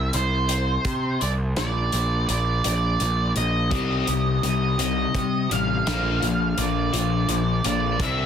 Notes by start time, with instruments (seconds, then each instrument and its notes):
Already playing: picked electric bass C2, lead electric guitar E5
0.13 picked electric bass C2, lead electric guitar C5, closed hi-hat
0.49 closed hi-hat
0.85 picked electric bass C3, kick, closed hi-hat
1.21 picked electric bass C2, lead electric guitar D5, closed hi-hat
1.57 picked electric bass A#1, lead electric guitar D5, snare, closed hi-hat
1.92 picked electric bass A#1, closed hi-hat
2.29 picked electric bass A#1, lead electric guitar D5, closed hi-hat
2.64 picked electric bass A#1, lead electric guitar D5, closed hi-hat
3.00 picked electric bass A#1, closed hi-hat
3.36 picked electric bass A#1, lead electric guitar D#5, closed hi-hat
3.71 picked electric bass C2, distorted electric guitar C3 G3 C4, clean electric guitar D#3 G3 C4 G4, kick, closed hi-hat
4.07 picked electric bass C2, distorted electric guitar C3 G3, clean electric guitar D#3 G3 C4 G4, closed hi-hat
4.43 picked electric bass C2, distorted electric guitar C3 G3, clean electric guitar D#3 G3 C4 G4, lead electric guitar D#5, closed hi-hat
4.78 distorted electric guitar C3 G3, clean electric guitar D#3 G3 C4 G4, lead electric guitar D#5, closed hi-hat
5.15 distorted electric guitar C3 G3, picked electric bass C3, kick, closed hi-hat
5.50 picked electric bass A1, distorted electric guitar C3 G3, clean electric guitar D#3 G3 C4 G4, lead electric guitar F5, closed hi-hat
5.85 picked electric bass A#1, distorted electric guitar A#2 F3 A#3, clean electric guitar D3 A#3 D4 F4, snare, closed hi-hat
6.21 picked electric bass A#1, distorted electric guitar A#2 F3, clean electric guitar D3 A#3 D4 F4, closed hi-hat
6.57 picked electric bass A#1, distorted electric guitar A#2 F3, clean electric guitar D3 A#3 D4 F4, lead electric guitar D5, closed hi-hat
6.93 picked electric bass A#1, distorted electric guitar A#2 F3, clean electric guitar D3 A#3 D4 F4, closed hi-hat
7.28 picked electric bass A#1, distorted electric guitar A#2 F3, closed hi-hat
7.64 picked electric bass A#1, distorted electric guitar A#2 F3, clean electric guitar D3 A#3 D4 F4, lead electric guitar D5, closed hi-hat
7.99 picked electric bass C2, distorted electric guitar C3 G3 C4, clean electric guitar E3 G3 C4 E4, lead electric guitar E5, kick, closed hi-hat